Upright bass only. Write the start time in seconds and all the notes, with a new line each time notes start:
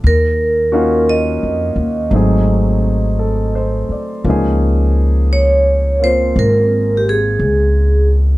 0.04 D#2
1.43 F2
1.76 D#2
2.11 G#1
3.89 muted upright bass stroke
4.24 C#2
6.36 G#1
7.39 C#2